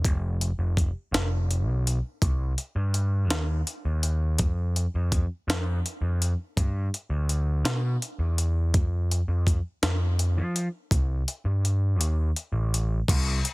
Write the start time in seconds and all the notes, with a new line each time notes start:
0.05 F1, kick, closed hi-hat
0.41 closed hi-hat
0.59 F1
0.77 kick, closed hi-hat
1.12 F1, snare, closed hi-hat
1.51 closed hi-hat
1.67 B1
1.87 closed hi-hat
2.22 C2, kick, closed hi-hat
2.58 closed hi-hat
2.76 G2
2.94 closed hi-hat
3.30 D#2, snare, closed hi-hat
3.67 closed hi-hat
3.85 D#2
4.03 closed hi-hat
4.38 F2, kick, closed hi-hat
4.76 closed hi-hat
4.95 F2
5.12 kick, closed hi-hat
5.48 F2, snare, closed hi-hat
5.86 closed hi-hat
6.02 F2
6.22 closed hi-hat
6.57 G2, kick, closed hi-hat
6.94 closed hi-hat
7.10 D2
7.29 closed hi-hat
7.64 B2, snare, closed hi-hat
8.02 closed hi-hat
8.19 E2
8.38 closed hi-hat
8.74 F2, kick, closed hi-hat
9.11 closed hi-hat
9.28 F2
9.47 kick, closed hi-hat
9.83 F2, snare, closed hi-hat
10.19 closed hi-hat
10.37 F3
10.56 closed hi-hat
10.91 C2, kick, closed hi-hat
11.28 closed hi-hat
11.45 G2
11.65 closed hi-hat
11.99 D#2, closed hi-hat
12.36 closed hi-hat
12.52 A1
12.74 closed hi-hat
13.08 C2, kick, closed hi-hat, crash
13.45 closed hi-hat